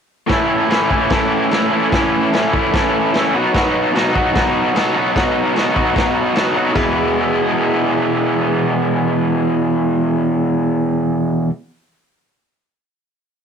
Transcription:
0.27 overdriven electric guitar A2 E3 A3 C#4 E4, kick, snare, crash
0.69 overdriven electric guitar A2 E3 A3 C#4 E4, snare, crash
0.90 overdriven electric guitar A2 E3 A3 C#4 E4, kick
1.10 overdriven electric guitar A2 E3 A3 C#4 E4, kick, snare, crash
1.50 overdriven electric guitar A2 E3 A3 C#4 E4, snare, crash
1.72 overdriven electric guitar A2 E3 A3 C#4 E4
1.92 overdriven electric guitar A2 E3 A3 C#4 E4, kick, snare, crash
2.32 overdriven electric guitar A2 E3 A3 C#4 E4, snare, crash
2.53 overdriven electric guitar A2 E3 A3 C#4 E4, kick
2.72 overdriven electric guitar A2 E3 A3 C#4 E4, kick, snare, crash
3.14 overdriven electric guitar A2 E3 A3 C#4 E4, snare, crash
3.34 overdriven electric guitar B2 F#3 B3 D#4 F#4
3.54 overdriven electric guitar B2 F#3 B3 D#4 F#4, kick, snare, crash
3.93 overdriven electric guitar B2 F#3 B3 D#4 F#4, crash
3.97 snare
4.14 overdriven electric guitar B2 F#3 B3 D#4 F#4, kick
4.33 overdriven electric guitar B2 F#3 B3 D#4 F#4, kick, snare, crash
4.74 overdriven electric guitar B2 F#3 B3 D#4 F#4, snare, crash
4.94 overdriven electric guitar B2 F#3 B3 D#4 F#4
5.14 overdriven electric guitar B2 F#3 B3 D#4 F#4, kick, snare, crash
5.54 overdriven electric guitar B2 F#3 B3 D#4 F#4, snare, crash
5.74 overdriven electric guitar B2 F#3 B3 D#4 F#4, kick
5.93 overdriven electric guitar B2 F#3 B3 D#4 F#4, kick, crash
5.98 snare
6.34 overdriven electric guitar B2 F#3 B3 D#4 F#4, snare, crash
6.55 overdriven electric guitar B2 F#3 B3 D#4 F#4
6.73 overdriven electric guitar E2 B2 E3 G#3 B3, kick, floor tom, splash
6.77 overdriven electric guitar E4

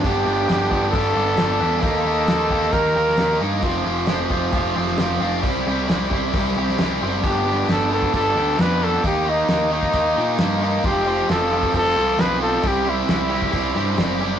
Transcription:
0.04 picked electric bass G1, overdriven electric guitar B3 D4 G4, trumpet G4, kick, open hi-hat
0.26 picked electric bass G1, overdriven electric guitar B3 D4 G4
0.48 picked electric bass G1, overdriven electric guitar B3 D4 G4, snare, open hi-hat
0.70 picked electric bass G1, overdriven electric guitar B3 D4 G4, kick
0.91 picked electric bass G1, overdriven electric guitar B3 D4, trumpet A4, kick, open hi-hat
0.95 overdriven electric guitar G4
1.15 picked electric bass G1, overdriven electric guitar B3 D4 G4
1.37 picked electric bass G1, overdriven electric guitar B3 D4 G4, snare, open hi-hat
1.60 picked electric bass E2, overdriven electric guitar B3 D4 G4
1.81 picked electric bass D#2, overdriven electric guitar A#3 D#4 G4, trumpet A4, kick, open hi-hat
2.05 picked electric bass D#2, overdriven electric guitar A#3 D#4 G4
2.28 picked electric bass D#2, overdriven electric guitar A#3 D#4 G4, snare, open hi-hat
2.50 overdriven electric guitar A#3 D#4 G4, kick
2.72 picked electric bass D#2, overdriven electric guitar A#3 D#4 G4, trumpet A#4, kick, open hi-hat
2.95 picked electric bass D#2, overdriven electric guitar A#3 D#4 G4
3.07 snare
3.17 picked electric bass D#2, overdriven electric guitar A#3 D#4 G4, snare, open hi-hat
3.40 picked electric bass G2, overdriven electric guitar A#3 D#4 G4
3.63 picked electric bass F1, overdriven electric guitar F3 C4 F4 G4, kick, open hi-hat
3.85 picked electric bass F1, overdriven electric guitar F3 C4 F4 G4
4.07 picked electric bass F1, overdriven electric guitar F3 C4 F4 G4, snare, open hi-hat
4.30 picked electric bass F1, overdriven electric guitar F3 C4 F4 G4, kick
4.52 picked electric bass F1, overdriven electric guitar F3 C4 F4 G4, kick, open hi-hat
4.75 picked electric bass F1, overdriven electric guitar F3 C4 F4 G4
4.87 snare
4.98 picked electric bass F1, overdriven electric guitar F3 C4 F4 G4, snare, open hi-hat
5.21 picked electric bass F1, overdriven electric guitar F3 C4 F4 G4
5.42 picked electric bass C2, overdriven electric guitar G3 C4 E4 G4, kick, open hi-hat
5.67 picked electric bass C2, overdriven electric guitar G3 C4 E4 G4
5.89 picked electric bass C2, overdriven electric guitar G3 C4 E4 G4, snare, open hi-hat
6.10 overdriven electric guitar G3 C4 E4 G4, kick
6.34 picked electric bass C2, overdriven electric guitar G3 C4 E4 G4, kick, open hi-hat
6.56 picked electric bass C2, overdriven electric guitar G3 C4 E4 G4
6.68 snare
6.78 picked electric bass C2, overdriven electric guitar G3 C4 E4 G4, snare, open hi-hat
7.01 picked electric bass F#1, overdriven electric guitar G3 C4 E4 G4
7.23 picked electric bass G1, overdriven electric guitar B3 D4 G4, trumpet G4, kick, open hi-hat
7.45 overdriven electric guitar B3 D4 G4
7.68 picked electric bass G1, overdriven electric guitar B3 D4 G4, trumpet A4, snare, open hi-hat
7.90 overdriven electric guitar B3 D4 G4, trumpet A4
8.03 kick
8.13 picked electric bass G1, overdriven electric guitar B3 D4 G4, trumpet A4, kick, open hi-hat
8.35 picked electric bass D2, overdriven electric guitar B3 D4 G4
8.58 picked electric bass F2, overdriven electric guitar B3 D4 G4, trumpet B4, snare, open hi-hat
8.81 overdriven electric guitar B3 D4 G4, trumpet A4
9.04 picked electric bass D#2, overdriven electric guitar A#3 D#4 G4, trumpet G4, kick, open hi-hat
9.25 overdriven electric guitar A#3 D#4 G4
9.30 trumpet D#4
9.48 picked electric bass D#2, overdriven electric guitar A#3 D#4 G4, snare, open hi-hat
9.71 overdriven electric guitar A#3 D#4 G4
9.83 kick
9.93 picked electric bass D#2, overdriven electric guitar A#3 D#4 G4, kick, open hi-hat
10.17 picked electric bass A#2, overdriven electric guitar A#3 D#4 G4
10.38 picked electric bass G2, overdriven electric guitar A#3 D#4 G4, snare, open hi-hat
10.62 overdriven electric guitar A#3 D#4 G4
10.84 picked electric bass F1, overdriven electric guitar F3 C4 F4 G4, trumpet G4, kick, open hi-hat
11.06 overdriven electric guitar F3 C4 F4 G4
11.29 picked electric bass F1, overdriven electric guitar F3 C4 F4 G4, trumpet A4, snare, open hi-hat
11.51 overdriven electric guitar F3 C4 F4 G4
11.63 kick
11.73 picked electric bass F1, overdriven electric guitar F3 C4 F4 G4, trumpet A4, kick, open hi-hat
11.95 picked electric bass C2, overdriven electric guitar F3 C4 F4 G4
12.18 picked electric bass B1, overdriven electric guitar F3 C4 F4 G4, trumpet B4, snare, open hi-hat
12.42 overdriven electric guitar F3 C4 F4 G4, trumpet A4
12.63 picked electric bass C2, overdriven electric guitar G3 C4 E4 G4, kick, open hi-hat
12.68 trumpet G4
12.85 overdriven electric guitar G3 C4 E4 G4, trumpet E4
13.07 picked electric bass C2, overdriven electric guitar G3 C4 E4 G4, snare, open hi-hat
13.29 overdriven electric guitar G3 C4 E4 G4
13.42 kick
13.52 picked electric bass C2, overdriven electric guitar G3 C4 E4 G4, kick, open hi-hat
13.74 picked electric bass G2, overdriven electric guitar G3 C4 E4 G4
13.97 picked electric bass F#1, overdriven electric guitar G3 C4 E4 G4, snare, open hi-hat
14.21 overdriven electric guitar G3 C4 E4 G4

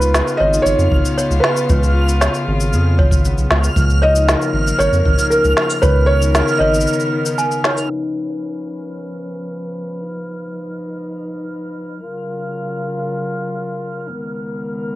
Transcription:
Already playing: analog synth bass C#2, harp C#3 B3 D#4 F4 A#4, string quartet C#3 B3 F4, felt piano B4, synth texture F6
0.02 cabasa
0.14 harp G#4, snare, cabasa
0.28 cabasa
0.37 analog synth bass G#1, harp D#4, toy piano C#5, felt piano D#5
0.53 harp F4, cabasa
0.62 analog synth bass G#1, harp G#4, felt piano C#5, cabasa
0.78 analog synth bass F2, cabasa
0.91 analog synth bass G#1, harp F4, kick
1.05 cabasa
1.18 harp B3, toy piano C#5, cabasa
1.31 analog synth bass C#2, cabasa
1.40 harp F4, felt piano B4, snare
1.56 cabasa
1.69 analog synth bass C#2, harp C#3, kick, cabasa
1.83 cabasa
1.95 harp F4
2.09 cabasa
2.21 harp G#4, toy piano C#5, snare, cabasa
2.34 cabasa
2.47 analog synth bass G#1, harp F4
2.60 cabasa
2.73 analog synth bass F2, harp G#4, cabasa
2.99 analog synth bass G#1, harp F4, toy piano C#5, kick
3.11 kick, cabasa
3.25 harp B3, cabasa
3.38 analog synth bass B1, cabasa
3.51 analog synth bass C#2, harp F4, snare
3.64 cabasa
3.76 analog synth bass C#2, harp C#3, string quartet F3 A#3, kick, cabasa
3.90 cabasa
4.02 harp D#4, toy piano C#5, felt piano D#5
4.16 harp F4, cabasa
4.28 harp A#4, snare, cabasa
4.42 cabasa
4.53 analog synth bass G#1, harp F4
4.67 cabasa
4.79 analog synth bass G#1, harp A#4, felt piano C#5, toy piano C#5, cabasa
4.93 analog synth bass F2, cabasa
5.05 analog synth bass G#1, harp D#4, kick
5.18 harp F4, cabasa
5.30 harp C#4, felt piano A#4, cabasa
5.44 analog synth bass C#2, cabasa
5.57 harp F4, snare
5.70 cabasa
5.82 analog synth bass C#2, harp C#3, string quartet D#3 B3 A#4, felt piano B4, toy piano C#5, kick, cabasa
6.06 harp D#4, felt piano C#5
6.22 cabasa
6.35 harp A#4, snare, cabasa
6.48 cabasa
6.58 analog synth bass G#1, harp D#4, toy piano C#5, felt piano D#5
6.74 cabasa
6.81 cabasa
6.87 harp A#4, cabasa
6.93 cabasa
7.00 cabasa
7.12 harp D#4
7.26 cabasa
7.38 harp B3, toy piano G#5, cabasa
7.52 cabasa
7.64 harp D#4, toy piano C#5, snare
7.77 cabasa
7.89 string quartet F3 C#4 B4, synth texture F6
9.78 cabasa
9.85 cabasa
9.98 string quartet D#4
10.36 cabasa
10.49 cabasa
10.88 cabasa
11.52 cabasa
11.91 cabasa
12.04 string quartet C#3 F#3 F4 A#4
14.10 string quartet C#2 D#3 B3 A#4
14.24 cabasa
14.50 cabasa
14.62 cabasa

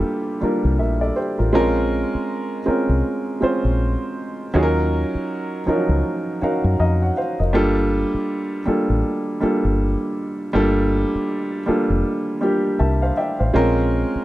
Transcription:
Already playing: upright piano G3 A3 A#3 D4 F4 G4 A4
0.41 upright piano G3 A#3 D4 F4 A#4, muted fingered electric bass stroke
0.65 fingered electric bass C2
0.79 fingered electric bass A#1, upright piano A#4 E5
1.01 upright piano A4 D5
1.16 upright piano G4 C5
1.39 fingered electric bass A1, upright piano F4 A#4
1.53 fingered electric bass A#1, upright piano G#3 C4 C#4 F4 A#4
2.15 muted fingered electric bass stroke
2.66 upright piano G#3 C4 C#4 F4 A#4, muted fingered electric bass stroke
2.89 fingered electric bass C2
3.41 upright piano G#3 C4 C#4 F4 C5, muted fingered electric bass stroke
3.65 fingered electric bass A#1
4.54 fingered electric bass D#2, upright piano F#3 C#4 D#4 F4 G#4
4.63 upright piano A#4
5.15 muted fingered electric bass stroke
5.66 upright piano F3 C#4 D#4 F4 A#4, muted fingered electric bass stroke
5.73 upright piano F#3
5.89 fingered electric bass C#2
6.41 upright piano C#4 D#4 F#4 A#4 F5 F#5, muted fingered electric bass stroke
6.64 fingered electric bass F#2
6.80 fingered electric bass F2, upright piano D#5 F5 A#5
7.02 upright piano C#5 F#5
7.17 upright piano C5 F5
7.40 fingered electric bass F1, upright piano A#4 D#5
7.53 fingered electric bass G1, upright piano G3 A#3 D4 F4 A4
8.14 muted fingered electric bass stroke
8.66 upright piano G3 A#3 D4 F4 A4, muted fingered electric bass stroke
8.90 fingered electric bass A1
9.40 upright piano G3 A#3 D4 F4 A4, muted fingered electric bass stroke
9.65 fingered electric bass G1
10.53 fingered electric bass G1, upright piano G3 A#3 D4 F4 A4
11.15 muted fingered electric bass stroke
11.66 upright piano G3 A#3 D4 F4 A4, muted fingered electric bass stroke
11.90 fingered electric bass F1
12.41 upright piano G3 A#3 D4 F4 G4
12.79 fingered electric bass C2, upright piano A#4 E5 A5
13.02 upright piano C5 F5
13.17 upright piano D5 E5 G5
13.39 fingered electric bass A1, upright piano C5 F5
13.54 fingered electric bass A#1, upright piano G#3 C4 C#4 F4 A#4
14.15 muted fingered electric bass stroke

